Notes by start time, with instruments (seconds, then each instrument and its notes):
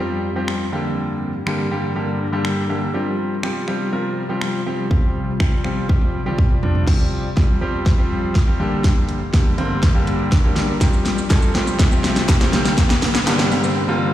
Already playing: ambient pad F2 F3 C4 G4
0.00 grand piano F3 G3 C4 G4
0.36 grand piano F3 G3 C4 G4
0.48 finger snap
0.73 ambient pad G2 G3 D4 A#4, grand piano D3 G3 A#3 G4
1.46 grand piano D3 G3 A#3 G4, finger snap
1.71 grand piano D3 G3 A#3 G4
1.95 grand piano D3 G3 A#3 G4
2.32 grand piano D3 G3 A#3 G4
2.45 finger snap
2.69 grand piano D3 G3 A#3 G4
2.94 ambient pad C3 F4 C5, grand piano F3 G3 C4 G4
3.43 grand piano F3 G3 C4 G4, finger snap
3.68 grand piano F3 G3 C4 G4, finger snap
3.92 grand piano F3 G3 C4 A#4
4.29 grand piano F3 G3 C4 G4
4.41 finger snap
4.66 grand piano F3 G3 C4 G4
4.91 grand piano F3 G3 C4 G4, ambient pad D5, kick
5.40 grand piano F3 G3 C4 G4, finger snap, kick
5.64 grand piano F3 G3 C4 G4, finger snap
5.89 grand piano F3 G3 C4 G4, kick, high tom
6.01 high tom
6.26 grand piano F3 G3 C4 G4, mid tom
6.38 kick, mid tom
6.63 grand piano F3 G3 C4 D4, floor tom
6.75 floor tom
6.87 ambient pad F2 F3 G4 C5, grand piano F3 G3 C4 G4, kick, snare, crash, riser
7.36 grand piano F3 G3 C4 G4, kick, snare
7.61 grand piano F3 G3 C4 G4
7.86 kick, snare
7.98 grand piano F3 G3 C4 G4
8.35 kick, snare
8.47 grand piano F3 G3 C4 G4
8.59 ambient pad G2 G3 D4 A#4, grand piano D3 G3 A#3 G4
8.84 kick, snare, closed hi-hat
9.09 closed hi-hat
9.33 grand piano D3 G3 A#3 G4, kick, snare, closed hi-hat
9.58 grand piano D3 G3 A#3 C4, closed hi-hat
9.83 kick, snare, closed hi-hat
9.95 grand piano D3 G3 A#3 G4
10.07 closed hi-hat
10.32 kick, snare, closed hi-hat
10.44 grand piano D3 G3 A#3 G4
10.56 snare, closed hi-hat
10.81 ambient pad C3 F4 C5, grand piano F3 G3 C4 G4, kick, snare, closed hi-hat, shaker
10.93 shaker
11.05 snare, closed hi-hat, shaker
11.18 shaker
11.30 grand piano F3 G3 C4 A4, kick, snare, clap, closed hi-hat, shaker
11.42 shaker
11.54 grand piano F3 G3 C4 G4, snare, closed hi-hat, shaker
11.67 shaker
11.79 kick, snare, closed hi-hat, shaker
11.91 grand piano F3 G3 C4 G4, shaker
12.04 snare, closed hi-hat, shaker
12.16 snare, shaker
12.29 kick, snare, clap, closed hi-hat, shaker
12.41 grand piano F3 G3 C4 G4, snare, shaker
12.53 ambient pad G2 D4 A#4, grand piano D3 G3 A#3 G4, snare, closed hi-hat, shaker
12.65 snare, shaker
12.78 kick, snare, closed hi-hat, shaker
12.90 snare, shaker
13.02 snare, open hi-hat, shaker
13.15 snare, shaker
13.27 grand piano D3 G3 A#3 G4, snare, clap, closed hi-hat, shaker
13.39 snare, shaker
13.51 grand piano D3 G3 A#3 G4, open hi-hat, shaker
13.64 shaker
13.88 grand piano D3 G3 A#3 F4